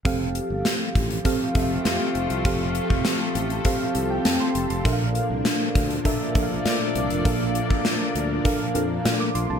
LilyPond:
<<
  \new Staff \with { instrumentName = "FM electric piano" } { \time 4/4 \key f \major \tempo 4 = 100 << { r1 | r2 r8. g''16 a''16 c'''8 c'''16~ | c'''16 r2. r8. | r2. r16 d'''16 c'''16 a''16 | } \\ { <c' g' a' f''>4~ <c' g' a' f''>16 r8. <c' g' a' f''>8 <c' g' a' e'' f''>4 r8 | <c' g' a' f''>4~ <c' g' a' f''>16 r8. <c' g' a' f''>8 r4. | <d' a' bes' e'' f''>4~ <d' a' bes' e'' f''>16 r8. <d' a' bes' e''>8 <d' a' bes' e'' f''>4 r8 | <d' a' bes' f''>4~ <d' a' bes' f''>16 r8. <d' a' bes' f''>8 <d' a' bes' f''>4 r8 | } >> }
  \new Staff \with { instrumentName = "FM electric piano" } { \clef bass \time 4/4 \key f \major r1 | r1 | bes,4. r2 r8 | bes,4. r2 r8 | }
  \new Staff \with { instrumentName = "Horn section" } { \time 4/4 \key f \major r2 <c f a f'>2~ | <c f a f'>2.~ <c f a f'>8 r8 | r2 <bes d' a' d''>2~ | <bes d' a' d''>2.~ <bes d' a' d''>8 r8 | }
  \new Staff \with { instrumentName = "String machine" } { \time 4/4 \key f \major <f c' g' a'>1~ | <f c' g' a'>1 | <f bes d'>1~ | <f bes d'>1 | }
  \new Staff \with { instrumentName = "Fretless electric bass" } { \clef bass \time 4/4 \key f \major f,,8. g,,16 r8 a,,8 r8 f,,8 f,16 r16 f,,16 c,16 | f,,8. f,,16 r8 a,,8 r8 c,8 f,16 r16 f,,16 f,,16 | bes,,8. c,16 r8 d,8 r8 bes,,8 bes,16 r16 c,16 f,,16 | bes,,8. bes,,16 r8 d,8 r8 f,8 bes,16 r16 bes,,16 c,16 | }
  \new DrumStaff \with { instrumentName = "Drums" } \drummode { \time 4/4 <hh bd>8 hh8 <hh sn>8 <hh bd>16 hh16 <hh bd>8 <hh bd>8 <hh sn>8 hh16 hh16 | <hh bd>8 hh16 bd16 <hh sn>8 hh16 hh16 <hh bd>8 hh8 <hh sn>8 hh16 hh16 | <hh bd>8 hh8 <hh sn>8 <hh bd>16 hh16 <hh bd>8 <hh bd>8 <hh sn>8 hh16 hh16 | <hh bd>8 hh16 bd16 <hh sn>8 hh8 <hh bd>8 hh8 <hh sn>8 hh8 | }
>>